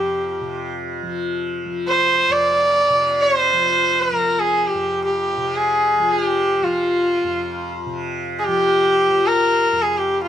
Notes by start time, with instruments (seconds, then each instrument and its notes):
Already playing: tanpura F2 C3 F3, sarangi G4
0.41 tanpura C3
1.03 tanpura F3
1.65 tanpura F3
1.88 sarangi C5
2.29 tanpura F2, sarangi D5
2.90 tanpura C3
3.22 sarangi C#5
3.37 sarangi C5
3.53 tanpura F3
4.01 sarangi A#4
4.12 tanpura F3
4.39 sarangi G#4
4.68 sarangi G4
4.74 tanpura F2
5.04 sarangi G4
5.37 tanpura C3
5.56 sarangi G#4
5.99 tanpura F3
6.12 sarangi G#4
6.24 sarangi G4
6.62 tanpura F3, sarangi F4
7.24 tanpura F2
7.86 tanpura C3
8.39 sarangi G#4
8.45 tanpura F3, sarangi G4
9.10 tanpura F3
9.27 sarangi A#4
9.72 tanpura F2
9.82 sarangi G#4
9.98 sarangi G4
10.23 sarangi F4